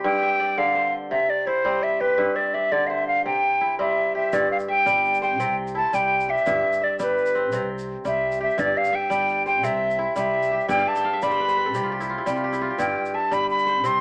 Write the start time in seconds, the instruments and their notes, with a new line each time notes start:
Already playing: kora C4 E4 G4
0.04 kora G2, flute G5
0.22 kora E5
0.40 kora D5
0.58 kora D3, flute F5
0.75 kora C5
1.11 kora C3, flute E5
1.30 flute D5
1.47 kora E4, flute C5
1.65 kora G3 C4
1.83 flute E5
2.01 kora G4, flute B4
2.18 kora G2
2.36 flute D5, kora E5
2.54 kora D5, flute E5
2.72 kora D3, flute D5
2.87 kora C5, flute E5 F5
3.08 flute F5
3.25 kora C3, flute G5
3.61 kora E4
3.79 kora G3 C4, flute E5
4.15 kora G4, flute E5
4.33 upright bass G1, kora G2, flute D5, shaker
4.52 flute F5
4.60 shaker
4.68 kora E5, flute G5
4.86 upright bass G1, kora G3, shaker
5.05 shaker
5.14 shaker
5.22 kora C5, flute G5, shaker
5.40 upright bass C2, kora C3 C4, shaker
5.67 shaker
5.75 kora E4, flute A5
5.93 upright bass C2, kora G3, flute G5, shaker
6.20 shaker
6.29 kora G4, flute E5
6.37 shaker
6.46 upright bass G1, kora G2, shaker
6.73 shaker
6.82 flute D5, kora E5
6.99 upright bass G1, kora G3, flute B4, shaker
7.18 shaker
7.26 shaker
7.35 kora C4, shaker
7.52 upright bass C2, kora C3 C4, shaker
7.78 shaker
8.05 upright bass C2, kora G3, flute E5, shaker
8.32 shaker
8.41 kora G4, flute E5
8.50 shaker
8.58 upright bass G1, kora G2, flute D5, shaker
8.77 flute F5
8.84 shaker
8.93 kora E5, flute G5
9.10 upright bass G1, kora G3, shaker
9.29 shaker
9.46 kora C5, flute G5, shaker
9.63 upright bass C2, kora C3 C4, flute E5, shaker
9.91 shaker
9.99 kora E4
10.16 upright bass C2, kora G3, flute E5, shaker
10.42 shaker
10.51 kora G4
10.60 shaker
10.68 upright bass G1, kora G2 D5, flute G5, shaker
10.78 kora F5, shaker
10.87 kora E5, flute A5
10.96 kora G5, shaker
11.04 kora F5
11.13 kora E5
11.22 upright bass G1, kora G3 D5, flute B5, shaker
11.31 kora C5
11.40 kora B4
11.48 kora C5, shaker
11.57 kora B4
11.66 kora A4
11.75 upright bass C2, kora C3 G4, shaker
11.83 kora F4
11.92 kora G4
12.00 kora E4, shaker
12.09 kora F4
12.18 kora E4
12.26 upright bass C2, kora G3 G4, shaker
12.36 kora F4
12.44 kora G4
12.52 kora E4, shaker
12.62 kora F4
12.70 kora G4
12.78 upright bass G1, kora G2, flute G5, shaker
13.05 shaker
13.14 kora E5, flute A5
13.31 upright bass G1, kora G3, flute B5, shaker
13.50 flute B5, shaker
13.59 shaker
13.66 kora C5, shaker
13.84 upright bass C2, kora C3 C4, flute C6, shaker